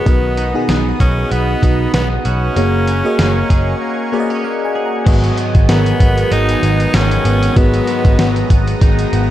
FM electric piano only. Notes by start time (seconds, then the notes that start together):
0.06 B2 B3 D#4 F#4 D#5
0.54 B3 D#4 F#4 G#4
1.62 B3 D#4 F#4 D#5
2.56 A#3 F#4 G#4 C#5
3.04 A#3 F#4 G#4 D#5
4.12 A#3 F#4 G#4 D5
4.20 D#5
4.44 F#5
4.65 G#5
4.86 A#5
5.06 G#2 B3 F#4 G#4 D#5
5.69 B3 F#4 G#4 A#4
7.56 G#2 B3 F#4 G#4 D#5
8.19 B3 F#4 G#4 F#5